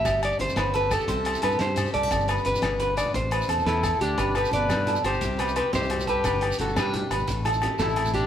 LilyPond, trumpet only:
\new Staff \with { instrumentName = "Trumpet" } { \time 12/8 \key g \major \tempo 4. = 116 r1. | r1 r8 e'4 d'8~ | d'8 g'8 b'4. g'4. g'8 g'4 g'8~ | g'4 fis'8 d'4. r4. e'4 d'8 | }